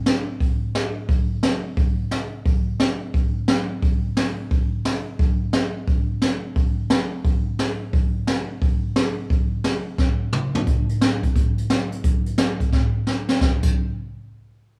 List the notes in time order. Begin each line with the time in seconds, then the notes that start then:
0.06 snare, open hi-hat
0.40 kick, open hi-hat
0.75 snare, open hi-hat
1.09 kick, open hi-hat
1.43 snare, open hi-hat
1.77 kick, open hi-hat
2.11 snare, open hi-hat
2.45 kick, open hi-hat
2.80 snare, open hi-hat
3.14 kick, open hi-hat
3.48 snare, open hi-hat
3.82 kick, open hi-hat
4.17 snare, open hi-hat
4.51 kick, open hi-hat
4.85 snare, open hi-hat
5.19 kick, open hi-hat
5.53 snare, open hi-hat
5.87 kick, open hi-hat
6.22 snare, open hi-hat
6.56 kick, open hi-hat
6.90 snare, open hi-hat
7.24 kick, open hi-hat
7.59 snare, open hi-hat
7.93 kick, open hi-hat
8.27 snare, open hi-hat
8.62 kick, open hi-hat
8.96 snare, open hi-hat
9.30 kick, open hi-hat
9.64 snare, open hi-hat
9.98 kick, snare
10.33 mid tom
10.55 floor tom
10.67 kick, closed hi-hat
10.89 closed hi-hat
11.01 snare, closed hi-hat
11.23 kick, closed hi-hat
11.36 kick, closed hi-hat
11.58 closed hi-hat
11.70 snare, closed hi-hat
11.92 closed hi-hat
12.04 kick, closed hi-hat
12.26 closed hi-hat
12.38 snare, closed hi-hat
12.60 kick, closed hi-hat
12.73 kick, snare
13.07 snare
13.29 snare
13.41 kick, snare
13.63 kick, crash